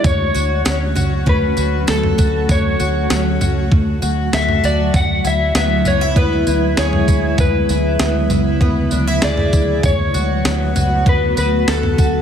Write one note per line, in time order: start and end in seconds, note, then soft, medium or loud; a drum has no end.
0.00 0.65 D4 medium
0.00 0.10 E4 medium
0.00 0.10 G#4 medium
0.04 0.31 D2 loud
0.04 12.22 F#3 medium
0.04 4.91 A3 medium
0.04 2.47 C#4 medium
0.04 4.91 F#4 medium
0.04 1.29 C#5 loud
0.04 kick loud
0.04 floor tom loud
0.04 tambourine medium
0.34 0.62 D2 loud
0.34 0.94 F#4 medium
0.34 tambourine medium
0.65 0.92 D2 loud
0.65 1.25 C#4 medium
0.65 snare loud
0.65 tambourine loud
0.95 1.23 C#2 medium
0.95 1.56 F#4 medium
0.95 floor tom medium
0.95 tambourine medium
1.26 1.53 D2 medium
1.26 3.09 C#4 medium
1.26 1.91 B4 medium
1.26 kick medium
1.26 floor tom medium
1.57 1.84 D2 medium
1.57 2.17 F#4 medium
1.57 tambourine medium
1.87 2.15 D2 medium
1.87 4.32 A4 medium
1.87 2.52 A4 medium
1.87 snare loud
1.87 tambourine medium
2.03 floor tom medium
2.18 2.46 D2 loud
2.18 2.78 F#4 medium
2.18 kick medium
2.18 tambourine medium
2.49 2.76 D2 loud
2.49 3.69 C#5 loud
2.49 kick loud
2.49 floor tom loud
2.49 tambourine medium
2.80 3.07 D2 loud
2.80 3.40 F#4 medium
2.80 tambourine medium
3.10 3.37 D2 loud
3.10 3.71 C#4 medium
3.10 snare loud
3.10 tambourine loud
3.41 3.68 C#2 medium
3.41 4.01 F#4 medium
3.41 floor tom medium
3.41 tambourine medium
3.71 3.98 D2 loud
3.71 kick medium
3.71 floor tom medium
4.02 4.29 D2 medium
4.02 4.63 F#4 medium
4.02 tambourine medium
4.32 4.60 D2 loud
4.32 5.00 A4 medium
4.32 4.65 E5 medium
4.32 snare loud
4.32 tambourine loud
4.49 floor tom medium
4.63 4.90 D2 loud
4.63 5.00 F#4 medium
4.63 4.96 D5 loud
4.63 tambourine medium
4.94 5.21 D2 loud
4.94 9.80 G#3 medium
4.94 7.36 B3 medium
4.94 9.80 E4 loud
4.94 5.26 F#5 loud
4.94 kick loud
4.94 floor tom loud
4.94 tambourine medium
5.24 5.51 D2 medium
5.24 5.86 E4 medium
5.24 5.56 E5 loud
5.24 tambourine medium
5.55 5.82 D2 loud
5.55 6.16 B3 medium
5.55 5.88 E5 loud
5.55 snare loud
5.55 tambourine loud
5.85 6.13 C#2 medium
5.85 6.01 D4 medium
5.85 6.18 C#5 medium
5.85 floor tom medium
5.85 tambourine medium
6.01 6.46 E4 medium
6.16 6.43 D2 loud
6.16 8.00 B3 medium
6.16 6.75 B4 medium
6.16 kick medium
6.16 floor tom medium
6.47 6.74 D2 loud
6.47 7.07 E4 medium
6.47 tambourine medium
6.77 7.04 D2 loud
6.77 9.21 G#4 medium
6.77 7.41 C#5 loud
6.77 snare loud
6.77 tambourine medium
6.93 floor tom medium
7.08 7.35 D2 loud
7.08 7.69 E4 medium
7.08 kick medium
7.08 tambourine medium
7.38 7.65 D2 medium
7.38 9.81 C#3 medium
7.38 9.29 B4 loud
7.38 kick loud
7.38 floor tom loud
7.38 tambourine medium
7.69 7.96 D2 loud
7.69 8.29 E4 medium
7.69 tambourine medium
7.99 8.27 D2 loud
7.99 8.61 B3 medium
7.99 snare loud
7.99 tambourine medium
8.30 8.57 C#2 medium
8.30 8.91 E4 medium
8.30 floor tom medium
8.30 tambourine medium
8.61 8.88 D2 loud
8.61 10.45 B3 medium
8.61 kick medium
8.61 floor tom medium
8.91 9.19 D2 loud
8.91 9.07 D4 medium
8.91 tambourine medium
9.07 9.52 E4 medium
9.22 9.49 D2 loud
9.22 9.90 G#4 medium
9.22 9.85 D5 medium
9.22 snare loud
9.22 tambourine loud
9.38 floor tom medium
9.53 9.80 D2 loud
9.53 9.90 E4 medium
9.53 kick medium
9.53 tambourine medium
9.83 10.11 D2 medium
9.83 12.22 A3 medium
9.83 12.22 B3 medium
9.83 12.22 F#4 loud
9.83 11.09 C#5 loud
9.83 kick loud
9.83 floor tom loud
9.83 tambourine medium
10.14 10.41 D2 loud
10.14 10.75 F#4 medium
10.14 tambourine medium
10.45 10.72 D2 loud
10.45 11.05 B3 medium
10.45 snare loud
10.45 tambourine loud
10.75 11.02 C#2 loud
10.75 11.37 F#4 medium
10.75 floor tom medium
10.75 tambourine medium
11.06 11.33 D2 loud
11.06 12.22 B3 medium
11.06 11.37 B4 medium
11.06 kick medium
11.06 floor tom medium
11.37 11.64 D2 medium
11.37 11.98 F#4 medium
11.37 11.69 B4 medium
11.37 tambourine medium
11.67 11.94 D2 loud
11.67 12.22 A4 medium
11.67 snare loud
11.67 tambourine medium
11.83 floor tom medium
11.98 12.22 D2 loud
11.98 12.22 F#4 medium
11.98 kick loud
11.98 tambourine medium